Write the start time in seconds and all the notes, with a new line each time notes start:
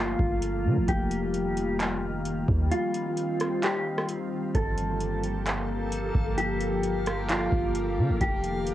Already playing: G1 F3 A3 A#3 F4
0.19 G1, kick
0.42 closed hi-hat
0.65 D3
0.77 G1
0.88 F1 D#3 G3 G4, kick, closed hi-hat
1.11 closed hi-hat
1.34 closed hi-hat
1.57 closed hi-hat
1.80 clap, closed hi-hat
2.25 closed hi-hat
2.48 D#2, kick
2.71 D#3 C4 F4, closed hi-hat
2.94 closed hi-hat
3.17 closed hi-hat
3.40 cross-stick, closed hi-hat
3.63 G4, clap, closed hi-hat
3.98 cross-stick
4.09 closed hi-hat
4.55 G1 F3 A#3 G4 A4 F5, kick, closed hi-hat
4.77 closed hi-hat
5.00 closed hi-hat
5.23 closed hi-hat
5.46 clap, closed hi-hat
5.92 closed hi-hat
6.15 G1, kick
6.38 G4, closed hi-hat
6.61 closed hi-hat
6.83 closed hi-hat
7.06 cross-stick, closed hi-hat
7.29 F4, clap, closed hi-hat
7.52 G1, kick
7.75 closed hi-hat
7.98 D3
8.10 G1
8.21 F1 D#3 G3 A#3 F4 G4 D#5, kick, closed hi-hat
8.44 closed hi-hat
8.67 closed hi-hat